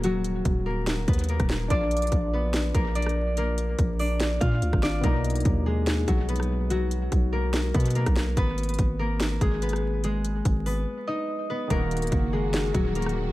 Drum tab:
HH |x-----------x-----------x-----------------------x-----------x--x--x--x--x-----x-----------------|x-----------x--x--x--x--x-----------------------x-----------x-----------x---x---x---------------|x-----------x-----------x-----------o-----------x-----------x-----------x-----------------------|x-----------x--x--x--x--x-----------------------x-----------x-----------x---x---x---------------|
SD |------------------------------------------------o-----------------------------r-----o-----------|------------------------------------------------o-----------------------------r-----------------|------------------------------------------------o-----------------------------r-----o-----------|------------------------------------------------o-----------------------------r-----------------|
BD |------------------------o-----------------------------------o-----------------o-----------------|o-----------------------o-----------------------------------o-----------------------------------|------------------------o-----------------------------------o-----------------o-----------------|o-----------------------o-----------------------------------o-----------------------------------|

HH |x-----------x-----------x-----------------------x-----------x--x--x--x--x-----x-----------------|x-----------x--x--x--x--x-----------------------x-----------x-----------x---x---x---------------|x-----------x-----------x-----------o-----------------------------------------------------------|x-----------x--x--x--x--x-----------------------x-----------x-----------x---x---x---------------|
SD |------------------------------------------------o-----------------------------r-----o-----------|------------------------------------------------o-----------------------------r-----------------|------------------------------------------------------------------------------------------------|------------------------------------------------o-----------------------------r-----------------|
BD |------------------------o-----------------------------------o-----------------o-----------------|o-----------------------o-----------------------------------o-----------------------------------|------------------------o-----------------------------------------------------------------------|o-----------------------o-----------------------------------o-----------------------------------|